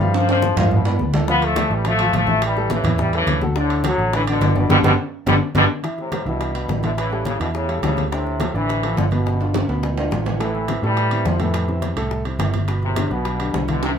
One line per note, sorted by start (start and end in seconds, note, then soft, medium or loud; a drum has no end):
0.00 0.51 G2 medium
0.00 0.13 E3 medium
0.00 0.24 F3 medium
0.00 0.13 G3 medium
0.00 0.24 F4 medium
0.00 0.24 F5 medium
0.14 0.29 D3 medium
0.14 0.29 F3 loud
0.14 high conga soft
0.14 high timbale medium
0.29 0.56 D3 medium
0.29 0.56 F3 loud
0.29 0.52 C4 medium
0.29 0.52 C5 medium
0.29 0.53 D5 medium
0.29 high conga soft
0.29 high timbale medium
0.42 high conga loud
0.57 0.96 G2 medium
0.57 0.71 D3 medium
0.57 0.80 F3 medium
0.57 0.71 F3 medium
0.57 0.81 F4 medium
0.57 0.81 F5 medium
0.57 low conga medium
0.57 low timbale loud
0.71 0.99 G2 medium
0.71 0.99 B2 medium
0.71 high conga soft
0.71 low conga medium
0.85 1.09 B3 medium
0.85 1.09 B4 medium
0.85 1.09 D5 medium
0.85 high conga soft
0.85 low timbale medium
0.99 1.65 D2 medium
0.99 high conga medium
1.13 1.25 A3 medium
1.13 1.26 A4 medium
1.13 1.26 D5 medium
1.13 high conga medium
1.13 low timbale medium
1.28 1.51 F3 medium
1.28 1.42 F3 medium
1.28 1.42 B3 loud
1.28 1.52 F4 medium
1.28 1.52 F5 medium
1.28 high bongo medium
1.28 high conga soft
1.42 1.72 F3 medium
1.42 1.72 A3 loud
1.42 high bongo soft
1.42 high conga soft
1.42 high timbale medium
1.56 1.80 A3 medium
1.56 1.80 A4 medium
1.56 1.81 D5 medium
1.56 high bongo medium
1.56 high conga loud
1.56 high timbale medium
1.70 2.10 A1 medium
1.70 1.86 E3 medium
1.70 1.86 G3 medium
1.70 high bongo soft
1.70 high conga soft
1.85 1.97 F3 medium
1.85 2.12 F3 medium
1.85 2.13 A3 loud
1.85 1.97 F4 medium
1.85 1.98 F5 medium
1.85 high bongo medium
1.85 high conga soft
1.85 high timbale medium
1.99 2.23 F3 medium
1.99 2.23 F4 medium
1.99 2.23 F5 medium
1.99 high conga soft
1.99 high timbale medium
2.13 2.79 A1 medium
2.13 2.41 F3 medium
2.13 2.41 A3 loud
2.13 high bongo soft
2.13 low bongo medium
2.13 high conga medium
2.13 high timbale medium
2.27 2.51 E3 medium
2.27 2.51 E4 medium
2.27 2.52 E5 medium
2.27 high bongo soft
2.27 high conga medium
2.42 2.69 E3 medium
2.42 2.70 G3 loud
2.42 high bongo medium
2.42 high conga soft
2.42 high timbale medium
2.56 2.80 G3 medium
2.56 2.80 G4 medium
2.56 2.80 A4 medium
2.56 high bongo soft
2.56 high conga soft
2.70 2.98 C#3 medium
2.70 2.98 E3 medium
2.70 high bongo medium
2.70 high conga loud
2.70 high timbale medium
2.84 3.24 E2 medium
2.84 3.08 E3 medium
2.84 3.09 E4 medium
2.84 3.09 E5 medium
2.84 high bongo soft
2.84 low conga medium
2.84 high timbale medium
2.98 3.13 E3 medium
2.98 3.13 G3 loud
2.98 high bongo medium
2.98 high conga soft
2.98 low conga medium
3.13 3.40 C#3 medium
3.13 3.41 E3 loud
3.13 3.37 G3 medium
3.13 3.37 G4 medium
3.13 3.37 A4 medium
3.13 high conga soft
3.13 high timbale medium
3.27 3.93 D2 medium
3.27 high bongo soft
3.27 low bongo medium
3.27 high conga medium
3.27 high timbale medium
3.41 3.53 F#3 medium
3.41 3.54 F#4 medium
3.41 3.54 A4 medium
3.41 high bongo soft
3.41 high conga medium
3.56 3.83 A2 medium
3.56 3.79 D3 medium
3.56 3.83 D3 loud
3.56 3.79 D4 medium
3.56 3.80 D5 medium
3.56 high bongo medium
3.70 high bongo soft
3.70 high conga soft
3.70 high timbale medium
3.84 4.14 D3 medium
3.84 4.08 F#3 medium
3.84 4.14 F#3 loud
3.84 4.08 F#4 medium
3.84 4.09 A4 medium
3.84 high bongo medium
3.84 high conga loud
3.84 high timbale loud
3.98 4.38 A1 loud
3.98 high bongo soft
3.98 high conga soft
4.13 4.21 A2 medium
4.13 4.25 D3 medium
4.13 4.21 E3 loud
4.13 4.25 D4 medium
4.13 4.25 D5 medium
4.13 high bongo medium
4.13 high conga soft
4.13 high timbale medium
4.27 4.55 B2 medium
4.27 4.51 D3 medium
4.27 4.55 D3 loud
4.27 4.51 D4 medium
4.27 4.51 D5 medium
4.27 high conga soft
4.27 high timbale medium
4.41 4.68 G1 medium
4.41 high bongo soft
4.41 low bongo medium
4.41 high conga medium
4.41 high timbale medium
4.41 low timbale medium
4.56 4.70 G2 medium
4.56 4.70 B2 medium
4.56 4.67 D3 medium
4.56 4.68 D4 medium
4.56 4.68 D5 medium
4.56 high bongo soft
4.56 high conga medium
4.69 4.80 G1 loud
4.69 4.77 B2 loud
4.69 4.77 D3 loud
4.69 4.77 G3 loud
4.69 4.79 B3 loud
4.69 4.79 D4 loud
4.69 4.79 G4 loud
4.69 low bongo loud
4.69 high conga loud
4.69 high timbale loud
4.83 4.94 G1 loud
4.83 4.92 B2 loud
4.83 4.92 D3 loud
4.83 4.92 G3 loud
4.83 4.93 B3 loud
4.83 4.93 D4 loud
4.83 4.93 G4 loud
4.83 low bongo loud
4.83 high conga loud
4.83 high timbale loud
5.26 5.37 G1 loud
5.26 5.34 B2 loud
5.26 5.34 D3 loud
5.26 5.34 G3 loud
5.26 5.36 B3 loud
5.26 5.36 D4 loud
5.26 5.36 G4 loud
5.26 low bongo loud
5.26 high conga loud
5.26 high timbale loud
5.55 5.66 G1 loud
5.55 5.63 B2 loud
5.55 5.63 D3 loud
5.55 5.63 G3 loud
5.55 5.64 B3 loud
5.55 5.64 D4 loud
5.55 5.64 G4 loud
5.55 low bongo medium
5.55 high conga loud
5.55 high timbale loud
5.83 6.07 E3 medium
5.83 6.07 E4 medium
5.83 6.07 E5 medium
5.83 high bongo medium
5.83 high conga soft
5.83 high timbale medium
5.98 6.26 A2 medium
5.98 6.25 C3 medium
5.98 high bongo soft
5.98 high conga soft
6.12 6.24 G3 medium
6.12 6.24 G4 medium
6.12 6.24 B4 medium
6.12 high bongo medium
6.12 high conga medium
6.12 high timbale medium
6.12 low timbale medium
6.26 6.66 C2 medium
6.26 6.80 G2 medium
6.26 6.80 B2 medium
6.26 6.50 E3 medium
6.26 6.50 E4 medium
6.26 6.50 E5 medium
6.26 high bongo soft
6.26 high conga soft
6.41 high bongo medium
6.41 high conga soft
6.41 high timbale medium
6.55 6.78 G3 medium
6.55 6.78 G4 medium
6.55 6.79 B4 medium
6.55 high conga soft
6.55 high timbale medium
6.69 7.35 A1 medium
6.69 high bongo medium
6.69 low bongo medium
6.69 high conga medium
6.69 low timbale medium
6.83 6.91 B2 medium
6.83 6.90 D3 medium
6.83 7.07 E3 medium
6.83 7.07 E4 medium
6.83 7.07 E5 medium
6.83 high bongo soft
6.83 high conga medium
6.83 high timbale medium
6.97 7.25 C#3 medium
6.97 7.24 E3 loud
6.97 high bongo medium
6.97 high timbale medium
7.11 7.35 G3 medium
7.11 7.35 G4 medium
7.11 7.35 A4 medium
7.11 high bongo soft
7.11 high conga soft
7.25 7.41 A2 medium
7.25 7.40 C#3 medium
7.25 high bongo medium
7.25 high conga medium
7.25 high timbale medium
7.25 low timbale medium
7.40 7.80 E2 medium
7.40 7.48 G2 medium
7.40 7.47 B2 medium
7.40 7.63 E3 medium
7.40 7.63 E4 medium
7.40 7.64 E5 medium
7.40 high conga soft
7.40 high timbale medium
7.54 7.82 A2 medium
7.54 7.81 C#3 medium
7.54 high bongo medium
7.54 high conga soft
7.68 7.80 G3 medium
7.68 7.80 G4 medium
7.68 7.80 A4 medium
7.68 high bongo soft
7.68 high conga soft
7.68 high timbale medium
7.82 8.49 D2 medium
7.82 8.04 A2 medium
7.82 8.03 C#3 medium
7.82 8.06 G3 medium
7.82 8.07 G4 medium
7.82 8.07 A4 medium
7.82 high bongo medium
7.82 low bongo medium
7.82 high conga medium
7.82 high timbale medium
7.82 low timbale medium
7.97 high bongo soft
7.97 high conga medium
7.97 high timbale medium
8.11 8.53 A2 medium
8.11 8.52 C3 medium
8.11 8.35 D3 medium
8.11 8.35 D4 medium
8.11 8.35 D5 medium
8.11 high bongo medium
8.11 high conga soft
8.11 high timbale medium
8.26 high bongo soft
8.26 high conga soft
8.40 8.52 F3 medium
8.40 8.52 F4 medium
8.40 8.52 A4 medium
8.40 high bongo medium
8.40 high conga medium
8.40 high timbale medium
8.40 low timbale medium
8.54 8.94 A1 medium
8.54 8.95 C3 medium
8.54 8.78 D3 medium
8.54 8.95 E3 loud
8.54 8.78 D4 medium
8.54 8.78 D5 medium
8.54 high bongo soft
8.54 high conga soft
8.68 high bongo medium
8.68 high conga soft
8.68 high timbale medium
8.83 9.07 F3 medium
8.83 9.07 F4 medium
8.83 9.07 A4 medium
8.83 high conga soft
8.83 high timbale medium
8.97 9.63 G1 medium
8.97 9.06 A2 medium
8.97 9.05 D3 medium
8.97 high bongo medium
8.97 low bongo medium
8.97 high conga medium
8.97 low timbale medium
9.11 9.66 G2 medium
9.11 9.35 B2 medium
9.11 9.65 B2 medium
9.11 9.35 B3 medium
9.11 9.36 B4 medium
9.11 high bongo soft
9.11 high conga medium
9.11 high timbale medium
9.26 high bongo medium
9.26 high conga soft
9.26 high timbale medium
9.40 9.64 D3 medium
9.40 9.64 D4 medium
9.40 9.64 F4 medium
9.40 high bongo soft
9.40 high conga soft
9.40 high timbale medium
9.54 high bongo medium
9.54 high conga medium
9.54 high timbale loud
9.68 10.08 D2 medium
9.68 9.92 B2 medium
9.68 9.92 B3 medium
9.68 9.93 B4 medium
9.68 high conga soft
9.68 high timbale medium
9.83 high bongo medium
9.83 low timbale medium
9.97 10.09 D3 medium
9.97 10.09 D4 medium
9.97 10.10 F4 medium
9.97 high bongo soft
9.97 high conga soft
9.97 low timbale medium
10.11 10.77 A1 medium
10.11 10.35 D3 medium
10.11 10.36 D4 medium
10.11 10.36 F4 medium
10.11 high bongo medium
10.11 low bongo medium
10.11 high conga medium
10.11 low timbale medium
10.26 high bongo soft
10.26 high conga medium
10.26 low timbale medium
10.40 10.63 A2 medium
10.40 10.81 C3 medium
10.40 10.81 E3 medium
10.40 10.64 A3 medium
10.40 10.64 A4 medium
10.40 high bongo medium
10.40 high conga soft
10.40 high timbale medium
10.55 high bongo soft
10.55 high conga soft
10.68 10.80 C3 medium
10.68 10.80 C4 medium
10.68 10.81 E4 medium
10.68 high bongo medium
10.68 high conga medium
10.68 high timbale medium
10.68 low timbale medium
10.82 11.22 A2 medium
10.82 11.06 A2 medium
10.82 11.24 E3 medium
10.82 11.23 G3 loud
10.82 11.07 A3 medium
10.82 11.07 A4 medium
10.82 high bongo soft
10.82 high conga soft
10.97 high bongo medium
10.97 high conga soft
10.97 high timbale medium
11.11 11.35 C3 medium
11.11 11.35 C4 medium
11.11 11.36 E4 medium
11.11 high conga soft
11.11 high timbale medium
11.25 11.92 F2 medium
11.25 11.41 C3 medium
11.25 11.41 F3 medium
11.25 high bongo medium
11.25 low bongo medium
11.25 high conga medium
11.25 low timbale medium
11.39 11.63 A2 medium
11.39 11.94 C3 medium
11.39 11.94 E3 medium
11.39 11.63 A3 medium
11.39 11.64 A4 medium
11.39 high bongo soft
11.39 high conga medium
11.39 high timbale medium
11.54 high bongo medium
11.54 high conga soft
11.54 high timbale medium
11.68 11.92 C3 medium
11.68 11.92 C4 medium
11.68 11.92 E4 medium
11.68 high bongo soft
11.68 high conga soft
11.82 high bongo medium
11.82 high conga medium
11.82 high timbale medium
11.82 low timbale medium
11.96 12.36 C2 medium
11.96 12.20 A2 medium
11.96 12.20 A3 medium
11.96 12.21 A4 medium
11.96 high timbale medium
12.11 high bongo medium
12.11 high conga soft
12.25 12.37 C3 medium
12.25 12.37 C4 medium
12.25 12.37 E4 medium
12.25 high bongo soft
12.25 high conga soft
12.25 high timbale medium
12.39 13.05 G1 medium
12.39 12.63 C3 medium
12.39 12.63 C4 medium
12.39 12.63 E4 medium
12.39 high bongo medium
12.39 low bongo medium
12.39 high conga medium
12.39 high timbale medium
12.39 low timbale medium
12.53 high bongo soft
12.53 high conga medium
12.53 high timbale medium
12.68 12.91 B2 medium
12.68 12.92 B3 medium
12.68 12.92 B4 medium
12.68 high bongo medium
12.68 high conga soft
12.68 high timbale medium
12.82 13.10 A2 medium
12.82 13.10 C3 medium
12.82 high bongo soft
12.82 high conga soft
12.96 13.09 D3 medium
12.96 13.09 D4 medium
12.96 13.09 G4 medium
12.96 high bongo medium
12.96 high conga medium
12.96 high timbale medium
12.96 low timbale medium
13.10 13.51 B1 medium
13.10 13.65 G2 medium
13.10 13.34 B2 medium
13.10 13.65 B2 medium
13.10 13.34 B3 medium
13.10 13.35 B4 medium
13.10 high bongo soft
13.10 high conga soft
13.25 high bongo medium
13.25 high conga soft
13.25 high timbale medium
13.39 13.63 D3 medium
13.39 13.63 D4 medium
13.39 13.63 G4 medium
13.39 high conga soft
13.39 high timbale medium
13.53 13.98 C2 medium
13.53 high bongo medium
13.53 low bongo medium
13.53 high conga medium
13.53 low timbale medium
13.68 13.83 B2 medium
13.68 13.83 D3 medium
13.68 13.91 E3 medium
13.68 13.92 E4 medium
13.68 13.92 E5 medium
13.68 high bongo soft
13.68 high conga medium
13.68 high timbale medium
13.83 13.90 G2 medium
13.83 13.90 C3 medium
13.83 high bongo medium
13.83 high timbale medium